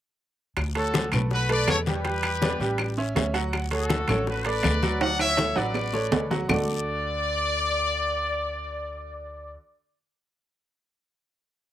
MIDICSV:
0, 0, Header, 1, 5, 480
1, 0, Start_track
1, 0, Key_signature, 2, "major"
1, 0, Tempo, 370142
1, 740, Time_signature, 4, 2, 24, 8
1, 15200, End_track
2, 0, Start_track
2, 0, Title_t, "Trumpet section"
2, 0, Program_c, 0, 61
2, 1006, Note_on_c, 0, 66, 63
2, 1016, Note_on_c, 0, 69, 92
2, 1439, Note_off_c, 0, 66, 0
2, 1445, Note_off_c, 0, 69, 0
2, 1720, Note_on_c, 0, 66, 76
2, 1722, Note_on_c, 0, 71, 104
2, 1933, Note_off_c, 0, 66, 0
2, 1934, Note_off_c, 0, 71, 0
2, 1962, Note_on_c, 0, 74, 96
2, 1965, Note_on_c, 0, 71, 82
2, 2173, Note_off_c, 0, 74, 0
2, 2175, Note_off_c, 0, 71, 0
2, 2209, Note_on_c, 0, 73, 108
2, 2210, Note_on_c, 0, 69, 78
2, 2310, Note_off_c, 0, 73, 0
2, 2311, Note_off_c, 0, 69, 0
2, 2434, Note_on_c, 0, 71, 85
2, 2446, Note_on_c, 0, 67, 66
2, 3813, Note_off_c, 0, 71, 0
2, 3819, Note_off_c, 0, 67, 0
2, 4854, Note_on_c, 0, 66, 69
2, 4866, Note_on_c, 0, 69, 87
2, 5508, Note_off_c, 0, 66, 0
2, 5514, Note_off_c, 0, 69, 0
2, 5570, Note_on_c, 0, 66, 70
2, 5580, Note_on_c, 0, 71, 83
2, 5784, Note_off_c, 0, 71, 0
2, 5795, Note_off_c, 0, 66, 0
2, 5799, Note_on_c, 0, 71, 81
2, 5809, Note_on_c, 0, 74, 106
2, 6461, Note_off_c, 0, 71, 0
2, 6499, Note_off_c, 0, 74, 0
2, 6509, Note_on_c, 0, 78, 110
2, 6515, Note_on_c, 0, 74, 77
2, 6729, Note_off_c, 0, 78, 0
2, 6732, Note_off_c, 0, 74, 0
2, 6759, Note_on_c, 0, 73, 79
2, 6759, Note_on_c, 0, 76, 106
2, 7198, Note_off_c, 0, 73, 0
2, 7198, Note_off_c, 0, 76, 0
2, 7228, Note_on_c, 0, 74, 88
2, 7237, Note_on_c, 0, 71, 68
2, 8188, Note_off_c, 0, 74, 0
2, 8192, Note_off_c, 0, 71, 0
2, 8438, Note_on_c, 0, 74, 105
2, 12412, Note_off_c, 0, 74, 0
2, 15200, End_track
3, 0, Start_track
3, 0, Title_t, "Upright piano"
3, 0, Program_c, 1, 0
3, 977, Note_on_c, 1, 69, 70
3, 978, Note_on_c, 1, 57, 72
3, 983, Note_on_c, 1, 73, 64
3, 1371, Note_off_c, 1, 57, 0
3, 1371, Note_off_c, 1, 69, 0
3, 1374, Note_off_c, 1, 73, 0
3, 1459, Note_on_c, 1, 57, 77
3, 1468, Note_on_c, 1, 69, 68
3, 1474, Note_on_c, 1, 71, 70
3, 1852, Note_off_c, 1, 57, 0
3, 1857, Note_off_c, 1, 69, 0
3, 1861, Note_off_c, 1, 71, 0
3, 1928, Note_on_c, 1, 57, 82
3, 1936, Note_on_c, 1, 69, 74
3, 1942, Note_on_c, 1, 71, 82
3, 2325, Note_off_c, 1, 57, 0
3, 2330, Note_off_c, 1, 69, 0
3, 2334, Note_off_c, 1, 71, 0
3, 2422, Note_on_c, 1, 55, 83
3, 2428, Note_on_c, 1, 67, 91
3, 2429, Note_on_c, 1, 79, 79
3, 2617, Note_off_c, 1, 55, 0
3, 2620, Note_off_c, 1, 67, 0
3, 2621, Note_off_c, 1, 79, 0
3, 2655, Note_on_c, 1, 55, 68
3, 2658, Note_on_c, 1, 67, 78
3, 2663, Note_on_c, 1, 79, 77
3, 3049, Note_off_c, 1, 55, 0
3, 3051, Note_off_c, 1, 67, 0
3, 3054, Note_off_c, 1, 79, 0
3, 3141, Note_on_c, 1, 59, 73
3, 3150, Note_on_c, 1, 71, 70
3, 3150, Note_on_c, 1, 74, 69
3, 3336, Note_off_c, 1, 59, 0
3, 3341, Note_off_c, 1, 71, 0
3, 3341, Note_off_c, 1, 74, 0
3, 3376, Note_on_c, 1, 55, 81
3, 3382, Note_on_c, 1, 79, 89
3, 3388, Note_on_c, 1, 67, 80
3, 3770, Note_off_c, 1, 55, 0
3, 3774, Note_off_c, 1, 79, 0
3, 3777, Note_off_c, 1, 67, 0
3, 3859, Note_on_c, 1, 61, 82
3, 3865, Note_on_c, 1, 76, 71
3, 3866, Note_on_c, 1, 73, 74
3, 4055, Note_off_c, 1, 61, 0
3, 4058, Note_off_c, 1, 76, 0
3, 4059, Note_off_c, 1, 73, 0
3, 4087, Note_on_c, 1, 61, 68
3, 4093, Note_on_c, 1, 73, 64
3, 4099, Note_on_c, 1, 76, 67
3, 4288, Note_off_c, 1, 61, 0
3, 4292, Note_off_c, 1, 73, 0
3, 4295, Note_off_c, 1, 76, 0
3, 4327, Note_on_c, 1, 54, 81
3, 4327, Note_on_c, 1, 66, 89
3, 4334, Note_on_c, 1, 78, 93
3, 4725, Note_off_c, 1, 54, 0
3, 4725, Note_off_c, 1, 66, 0
3, 4729, Note_off_c, 1, 78, 0
3, 4809, Note_on_c, 1, 57, 71
3, 4814, Note_on_c, 1, 69, 71
3, 4816, Note_on_c, 1, 73, 68
3, 5207, Note_off_c, 1, 57, 0
3, 5210, Note_off_c, 1, 69, 0
3, 5211, Note_off_c, 1, 73, 0
3, 5297, Note_on_c, 1, 57, 72
3, 5303, Note_on_c, 1, 73, 78
3, 5305, Note_on_c, 1, 69, 71
3, 5692, Note_off_c, 1, 57, 0
3, 5696, Note_off_c, 1, 73, 0
3, 5697, Note_off_c, 1, 69, 0
3, 5778, Note_on_c, 1, 69, 81
3, 5781, Note_on_c, 1, 57, 76
3, 5784, Note_on_c, 1, 74, 83
3, 6173, Note_off_c, 1, 69, 0
3, 6175, Note_off_c, 1, 57, 0
3, 6177, Note_off_c, 1, 74, 0
3, 6257, Note_on_c, 1, 54, 75
3, 6258, Note_on_c, 1, 66, 84
3, 6265, Note_on_c, 1, 78, 78
3, 6455, Note_off_c, 1, 54, 0
3, 6456, Note_off_c, 1, 66, 0
3, 6460, Note_off_c, 1, 78, 0
3, 6488, Note_on_c, 1, 54, 70
3, 6496, Note_on_c, 1, 78, 70
3, 6498, Note_on_c, 1, 66, 77
3, 6888, Note_off_c, 1, 54, 0
3, 6893, Note_off_c, 1, 78, 0
3, 6894, Note_off_c, 1, 66, 0
3, 6972, Note_on_c, 1, 69, 69
3, 6974, Note_on_c, 1, 57, 70
3, 6978, Note_on_c, 1, 73, 71
3, 7174, Note_off_c, 1, 69, 0
3, 7175, Note_off_c, 1, 57, 0
3, 7177, Note_off_c, 1, 73, 0
3, 7203, Note_on_c, 1, 54, 82
3, 7206, Note_on_c, 1, 66, 88
3, 7207, Note_on_c, 1, 78, 88
3, 7605, Note_off_c, 1, 54, 0
3, 7607, Note_off_c, 1, 66, 0
3, 7608, Note_off_c, 1, 78, 0
3, 7687, Note_on_c, 1, 57, 74
3, 7688, Note_on_c, 1, 69, 70
3, 7699, Note_on_c, 1, 73, 82
3, 7891, Note_off_c, 1, 57, 0
3, 7892, Note_off_c, 1, 69, 0
3, 7898, Note_off_c, 1, 73, 0
3, 7931, Note_on_c, 1, 57, 66
3, 7935, Note_on_c, 1, 69, 66
3, 7938, Note_on_c, 1, 73, 57
3, 8134, Note_off_c, 1, 57, 0
3, 8136, Note_off_c, 1, 69, 0
3, 8138, Note_off_c, 1, 73, 0
3, 8176, Note_on_c, 1, 54, 81
3, 8177, Note_on_c, 1, 66, 83
3, 8183, Note_on_c, 1, 78, 82
3, 8376, Note_off_c, 1, 54, 0
3, 8378, Note_off_c, 1, 66, 0
3, 8381, Note_off_c, 1, 78, 0
3, 8410, Note_on_c, 1, 50, 83
3, 8414, Note_on_c, 1, 57, 76
3, 8416, Note_on_c, 1, 62, 77
3, 8422, Note_on_c, 1, 69, 85
3, 8425, Note_on_c, 1, 66, 80
3, 12384, Note_off_c, 1, 50, 0
3, 12387, Note_off_c, 1, 57, 0
3, 12389, Note_off_c, 1, 62, 0
3, 12396, Note_off_c, 1, 69, 0
3, 12399, Note_off_c, 1, 66, 0
3, 15200, End_track
4, 0, Start_track
4, 0, Title_t, "Upright bass"
4, 0, Program_c, 2, 32
4, 735, Note_on_c, 2, 38, 90
4, 1405, Note_off_c, 2, 38, 0
4, 1451, Note_on_c, 2, 35, 83
4, 2123, Note_off_c, 2, 35, 0
4, 2169, Note_on_c, 2, 40, 82
4, 3297, Note_off_c, 2, 40, 0
4, 3369, Note_on_c, 2, 33, 85
4, 4042, Note_off_c, 2, 33, 0
4, 4096, Note_on_c, 2, 38, 89
4, 5222, Note_off_c, 2, 38, 0
4, 5289, Note_on_c, 2, 33, 82
4, 5964, Note_off_c, 2, 33, 0
4, 6014, Note_on_c, 2, 38, 94
4, 7144, Note_off_c, 2, 38, 0
4, 7212, Note_on_c, 2, 33, 78
4, 7888, Note_off_c, 2, 33, 0
4, 7927, Note_on_c, 2, 38, 92
4, 8360, Note_off_c, 2, 38, 0
4, 8416, Note_on_c, 2, 38, 90
4, 12389, Note_off_c, 2, 38, 0
4, 15200, End_track
5, 0, Start_track
5, 0, Title_t, "Drums"
5, 733, Note_on_c, 9, 65, 84
5, 740, Note_on_c, 9, 60, 70
5, 742, Note_on_c, 9, 74, 70
5, 745, Note_on_c, 9, 63, 33
5, 748, Note_on_c, 9, 75, 62
5, 863, Note_off_c, 9, 65, 0
5, 870, Note_off_c, 9, 60, 0
5, 871, Note_off_c, 9, 74, 0
5, 875, Note_off_c, 9, 63, 0
5, 878, Note_off_c, 9, 75, 0
5, 976, Note_on_c, 9, 65, 71
5, 984, Note_on_c, 9, 60, 31
5, 994, Note_on_c, 9, 63, 32
5, 1105, Note_off_c, 9, 65, 0
5, 1113, Note_off_c, 9, 60, 0
5, 1124, Note_off_c, 9, 63, 0
5, 1216, Note_on_c, 9, 65, 63
5, 1216, Note_on_c, 9, 66, 59
5, 1217, Note_on_c, 9, 60, 59
5, 1224, Note_on_c, 9, 73, 75
5, 1230, Note_on_c, 9, 63, 97
5, 1345, Note_off_c, 9, 65, 0
5, 1345, Note_off_c, 9, 66, 0
5, 1347, Note_off_c, 9, 60, 0
5, 1354, Note_off_c, 9, 73, 0
5, 1359, Note_off_c, 9, 63, 0
5, 1448, Note_on_c, 9, 65, 83
5, 1458, Note_on_c, 9, 73, 64
5, 1465, Note_on_c, 9, 75, 69
5, 1466, Note_on_c, 9, 60, 35
5, 1473, Note_on_c, 9, 63, 37
5, 1473, Note_on_c, 9, 64, 81
5, 1578, Note_off_c, 9, 65, 0
5, 1588, Note_off_c, 9, 73, 0
5, 1595, Note_off_c, 9, 75, 0
5, 1596, Note_off_c, 9, 60, 0
5, 1603, Note_off_c, 9, 63, 0
5, 1603, Note_off_c, 9, 64, 0
5, 1694, Note_on_c, 9, 74, 70
5, 1701, Note_on_c, 9, 60, 64
5, 1711, Note_on_c, 9, 63, 30
5, 1824, Note_off_c, 9, 74, 0
5, 1830, Note_off_c, 9, 60, 0
5, 1840, Note_off_c, 9, 63, 0
5, 1937, Note_on_c, 9, 65, 78
5, 1949, Note_on_c, 9, 63, 36
5, 2067, Note_off_c, 9, 65, 0
5, 2079, Note_off_c, 9, 63, 0
5, 2174, Note_on_c, 9, 65, 91
5, 2174, Note_on_c, 9, 66, 85
5, 2181, Note_on_c, 9, 60, 34
5, 2181, Note_on_c, 9, 61, 81
5, 2181, Note_on_c, 9, 73, 75
5, 2184, Note_on_c, 9, 75, 66
5, 2185, Note_on_c, 9, 63, 80
5, 2304, Note_off_c, 9, 65, 0
5, 2304, Note_off_c, 9, 66, 0
5, 2311, Note_off_c, 9, 60, 0
5, 2311, Note_off_c, 9, 61, 0
5, 2311, Note_off_c, 9, 73, 0
5, 2314, Note_off_c, 9, 75, 0
5, 2315, Note_off_c, 9, 63, 0
5, 2415, Note_on_c, 9, 73, 61
5, 2425, Note_on_c, 9, 60, 33
5, 2427, Note_on_c, 9, 63, 90
5, 2545, Note_off_c, 9, 73, 0
5, 2555, Note_off_c, 9, 60, 0
5, 2556, Note_off_c, 9, 63, 0
5, 2652, Note_on_c, 9, 65, 67
5, 2658, Note_on_c, 9, 60, 71
5, 2663, Note_on_c, 9, 74, 69
5, 2674, Note_on_c, 9, 63, 31
5, 2782, Note_off_c, 9, 65, 0
5, 2787, Note_off_c, 9, 60, 0
5, 2793, Note_off_c, 9, 74, 0
5, 2804, Note_off_c, 9, 63, 0
5, 2892, Note_on_c, 9, 65, 102
5, 2899, Note_on_c, 9, 60, 33
5, 2903, Note_on_c, 9, 75, 60
5, 2908, Note_on_c, 9, 63, 32
5, 3022, Note_off_c, 9, 65, 0
5, 3029, Note_off_c, 9, 60, 0
5, 3033, Note_off_c, 9, 75, 0
5, 3037, Note_off_c, 9, 63, 0
5, 3129, Note_on_c, 9, 66, 59
5, 3136, Note_on_c, 9, 60, 60
5, 3143, Note_on_c, 9, 63, 96
5, 3146, Note_on_c, 9, 73, 64
5, 3259, Note_off_c, 9, 66, 0
5, 3266, Note_off_c, 9, 60, 0
5, 3273, Note_off_c, 9, 63, 0
5, 3276, Note_off_c, 9, 73, 0
5, 3376, Note_on_c, 9, 60, 34
5, 3382, Note_on_c, 9, 63, 34
5, 3387, Note_on_c, 9, 73, 75
5, 3506, Note_off_c, 9, 60, 0
5, 3512, Note_off_c, 9, 63, 0
5, 3516, Note_off_c, 9, 73, 0
5, 3606, Note_on_c, 9, 65, 78
5, 3617, Note_on_c, 9, 63, 29
5, 3621, Note_on_c, 9, 75, 67
5, 3625, Note_on_c, 9, 60, 61
5, 3625, Note_on_c, 9, 74, 65
5, 3736, Note_off_c, 9, 65, 0
5, 3747, Note_off_c, 9, 63, 0
5, 3751, Note_off_c, 9, 75, 0
5, 3755, Note_off_c, 9, 60, 0
5, 3755, Note_off_c, 9, 74, 0
5, 3860, Note_on_c, 9, 63, 31
5, 3990, Note_off_c, 9, 63, 0
5, 4099, Note_on_c, 9, 65, 76
5, 4099, Note_on_c, 9, 66, 86
5, 4100, Note_on_c, 9, 73, 75
5, 4102, Note_on_c, 9, 63, 73
5, 4109, Note_on_c, 9, 60, 36
5, 4109, Note_on_c, 9, 61, 82
5, 4229, Note_off_c, 9, 65, 0
5, 4229, Note_off_c, 9, 66, 0
5, 4229, Note_off_c, 9, 73, 0
5, 4231, Note_off_c, 9, 63, 0
5, 4238, Note_off_c, 9, 60, 0
5, 4238, Note_off_c, 9, 61, 0
5, 4333, Note_on_c, 9, 65, 65
5, 4341, Note_on_c, 9, 73, 68
5, 4344, Note_on_c, 9, 60, 34
5, 4463, Note_off_c, 9, 65, 0
5, 4471, Note_off_c, 9, 73, 0
5, 4474, Note_off_c, 9, 60, 0
5, 4580, Note_on_c, 9, 65, 77
5, 4581, Note_on_c, 9, 75, 59
5, 4582, Note_on_c, 9, 74, 77
5, 4584, Note_on_c, 9, 63, 34
5, 4586, Note_on_c, 9, 60, 67
5, 4709, Note_off_c, 9, 65, 0
5, 4711, Note_off_c, 9, 75, 0
5, 4712, Note_off_c, 9, 74, 0
5, 4714, Note_off_c, 9, 63, 0
5, 4716, Note_off_c, 9, 60, 0
5, 4813, Note_on_c, 9, 65, 71
5, 4820, Note_on_c, 9, 63, 35
5, 4821, Note_on_c, 9, 60, 34
5, 4943, Note_off_c, 9, 65, 0
5, 4950, Note_off_c, 9, 60, 0
5, 4950, Note_off_c, 9, 63, 0
5, 5051, Note_on_c, 9, 65, 69
5, 5051, Note_on_c, 9, 66, 55
5, 5058, Note_on_c, 9, 60, 61
5, 5059, Note_on_c, 9, 73, 65
5, 5060, Note_on_c, 9, 63, 91
5, 5181, Note_off_c, 9, 65, 0
5, 5181, Note_off_c, 9, 66, 0
5, 5187, Note_off_c, 9, 60, 0
5, 5189, Note_off_c, 9, 73, 0
5, 5190, Note_off_c, 9, 63, 0
5, 5286, Note_on_c, 9, 65, 83
5, 5302, Note_on_c, 9, 60, 36
5, 5303, Note_on_c, 9, 73, 72
5, 5304, Note_on_c, 9, 75, 73
5, 5306, Note_on_c, 9, 63, 36
5, 5306, Note_on_c, 9, 64, 83
5, 5415, Note_off_c, 9, 65, 0
5, 5432, Note_off_c, 9, 60, 0
5, 5432, Note_off_c, 9, 73, 0
5, 5434, Note_off_c, 9, 75, 0
5, 5436, Note_off_c, 9, 63, 0
5, 5436, Note_off_c, 9, 64, 0
5, 5540, Note_on_c, 9, 74, 65
5, 5541, Note_on_c, 9, 60, 67
5, 5546, Note_on_c, 9, 63, 33
5, 5670, Note_off_c, 9, 74, 0
5, 5671, Note_off_c, 9, 60, 0
5, 5675, Note_off_c, 9, 63, 0
5, 5768, Note_on_c, 9, 65, 79
5, 5783, Note_on_c, 9, 63, 33
5, 5898, Note_off_c, 9, 65, 0
5, 5913, Note_off_c, 9, 63, 0
5, 6005, Note_on_c, 9, 65, 83
5, 6005, Note_on_c, 9, 66, 77
5, 6017, Note_on_c, 9, 60, 37
5, 6017, Note_on_c, 9, 61, 91
5, 6018, Note_on_c, 9, 63, 77
5, 6020, Note_on_c, 9, 75, 64
5, 6021, Note_on_c, 9, 73, 80
5, 6135, Note_off_c, 9, 65, 0
5, 6135, Note_off_c, 9, 66, 0
5, 6147, Note_off_c, 9, 60, 0
5, 6147, Note_off_c, 9, 61, 0
5, 6148, Note_off_c, 9, 63, 0
5, 6150, Note_off_c, 9, 75, 0
5, 6151, Note_off_c, 9, 73, 0
5, 6257, Note_on_c, 9, 60, 33
5, 6258, Note_on_c, 9, 63, 89
5, 6262, Note_on_c, 9, 73, 65
5, 6386, Note_off_c, 9, 60, 0
5, 6387, Note_off_c, 9, 63, 0
5, 6392, Note_off_c, 9, 73, 0
5, 6495, Note_on_c, 9, 60, 76
5, 6497, Note_on_c, 9, 74, 72
5, 6499, Note_on_c, 9, 65, 102
5, 6506, Note_on_c, 9, 63, 33
5, 6625, Note_off_c, 9, 60, 0
5, 6627, Note_off_c, 9, 74, 0
5, 6628, Note_off_c, 9, 65, 0
5, 6636, Note_off_c, 9, 63, 0
5, 6734, Note_on_c, 9, 65, 79
5, 6735, Note_on_c, 9, 60, 32
5, 6743, Note_on_c, 9, 75, 65
5, 6744, Note_on_c, 9, 63, 38
5, 6864, Note_off_c, 9, 60, 0
5, 6864, Note_off_c, 9, 65, 0
5, 6873, Note_off_c, 9, 75, 0
5, 6874, Note_off_c, 9, 63, 0
5, 6966, Note_on_c, 9, 65, 83
5, 6976, Note_on_c, 9, 73, 72
5, 6979, Note_on_c, 9, 60, 62
5, 6984, Note_on_c, 9, 63, 92
5, 7095, Note_off_c, 9, 65, 0
5, 7106, Note_off_c, 9, 73, 0
5, 7109, Note_off_c, 9, 60, 0
5, 7113, Note_off_c, 9, 63, 0
5, 7206, Note_on_c, 9, 65, 73
5, 7217, Note_on_c, 9, 73, 70
5, 7218, Note_on_c, 9, 63, 36
5, 7225, Note_on_c, 9, 60, 35
5, 7336, Note_off_c, 9, 65, 0
5, 7347, Note_off_c, 9, 73, 0
5, 7348, Note_off_c, 9, 63, 0
5, 7355, Note_off_c, 9, 60, 0
5, 7448, Note_on_c, 9, 66, 80
5, 7458, Note_on_c, 9, 74, 67
5, 7459, Note_on_c, 9, 75, 61
5, 7460, Note_on_c, 9, 63, 33
5, 7464, Note_on_c, 9, 60, 59
5, 7577, Note_off_c, 9, 66, 0
5, 7588, Note_off_c, 9, 74, 0
5, 7589, Note_off_c, 9, 75, 0
5, 7590, Note_off_c, 9, 63, 0
5, 7593, Note_off_c, 9, 60, 0
5, 7699, Note_on_c, 9, 60, 79
5, 7706, Note_on_c, 9, 63, 34
5, 7829, Note_off_c, 9, 60, 0
5, 7835, Note_off_c, 9, 63, 0
5, 7936, Note_on_c, 9, 66, 101
5, 7940, Note_on_c, 9, 73, 67
5, 7942, Note_on_c, 9, 63, 83
5, 8066, Note_off_c, 9, 66, 0
5, 8070, Note_off_c, 9, 73, 0
5, 8072, Note_off_c, 9, 63, 0
5, 8182, Note_on_c, 9, 73, 67
5, 8183, Note_on_c, 9, 61, 72
5, 8184, Note_on_c, 9, 63, 78
5, 8184, Note_on_c, 9, 66, 70
5, 8312, Note_off_c, 9, 73, 0
5, 8313, Note_off_c, 9, 61, 0
5, 8314, Note_off_c, 9, 63, 0
5, 8314, Note_off_c, 9, 66, 0
5, 8419, Note_on_c, 9, 64, 91
5, 8421, Note_on_c, 9, 66, 87
5, 8422, Note_on_c, 9, 61, 95
5, 8423, Note_on_c, 9, 74, 96
5, 8424, Note_on_c, 9, 75, 99
5, 8549, Note_off_c, 9, 64, 0
5, 8551, Note_off_c, 9, 66, 0
5, 8552, Note_off_c, 9, 61, 0
5, 8553, Note_off_c, 9, 74, 0
5, 8554, Note_off_c, 9, 75, 0
5, 15200, End_track
0, 0, End_of_file